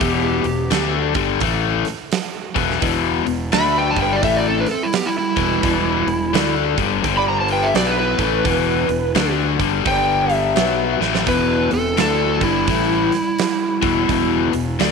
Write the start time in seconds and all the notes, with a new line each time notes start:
Already playing: B3 G4
0.01 E1 E2 B2 E3, kick, open hi-hat
0.44 E1 E2 B2, open hi-hat
0.71 D2 D3 A3 D4, snare, open hi-hat
1.14 G1 G2 D3 G3, kick, open hi-hat
1.40 A1 A2 E3 A3, kick, open hi-hat
1.85 snare, open hi-hat
2.12 snare, open hi-hat
2.55 E1 E2 B2 E3, kick, open hi-hat
2.70 snare
2.82 E1 E2 B2 E3, kick, open hi-hat
3.26 E1 E2 B2, open hi-hat
3.52 D2 D3 A3 D4 E5 B5, snare, open hi-hat
3.77 B4 G5
3.90 C5 A5
3.96 G1 G2 D3 G3, kick, open hi-hat
4.01 B4 G5
4.13 F#4 D5
4.23 A1 A2 E3 A3 G4 E5, kick, open hi-hat
4.36 F#4 D5
4.48 C4 A4
4.60 D4 B4
4.66 snare, open hi-hat
4.71 C4 A4
4.83 G3 E4
4.93 G4, snare, open hi-hat
4.97 B3
5.06 G3 E4
5.18 G3 E4
5.37 E1 E2 B2 E3, kick, open hi-hat
5.63 E1 E2 B2 E3, kick, open hi-hat
6.07 E1 E2 B2, open hi-hat
6.34 D2 D3 A3 D4, snare, open hi-hat
6.77 G1 G2 D3 G3, kick, open hi-hat
7.04 G1 G2 D3 G3, kick, open hi-hat
7.17 D5 B5
7.28 C5 A#5
7.41 C5 A5
7.48 open hi-hat
7.53 B4 G5
7.63 G4 E5
7.74 B1 B2 F#3 B3 G4 D5, snare, open hi-hat
7.86 D4 B4
7.99 E4 B4
8.18 A1 A2 E3 A3, kick, open hi-hat
8.44 E1 E2 B2 E3, kick, open hi-hat
8.88 E1 E2 B2, open hi-hat
9.14 D2 D3 A3 D4, snare, open hi-hat
9.59 G1 G2 D3 G3, kick, open hi-hat
9.85 G1 G2 D3 G3 D5 G5, kick, open hi-hat
10.30 G4 E5, open hi-hat
10.56 B1 B2 F#3 B3, snare, open hi-hat
11.00 A1 A2 E3 A3, snare
11.15 snare
11.27 E1 E2 B2 E3 E4 B4, kick, open hi-hat
11.71 E1 E2 B2 C4 A4, open hi-hat
11.97 D2 D3 A3 D4 E4 A4, snare, open hi-hat
12.41 G1 G2 D3 G3 E4, kick, open hi-hat
12.68 A1 A2 E3 A3, kick, open hi-hat
13.12 snare, open hi-hat
13.39 snare, open hi-hat
13.82 E1 E2 B2 E3, kick, open hi-hat
14.09 E1 E2 B2 E3, kick, open hi-hat
14.53 E1 E2 B2, open hi-hat
14.79 D2 D3 A3 D4, snare, open hi-hat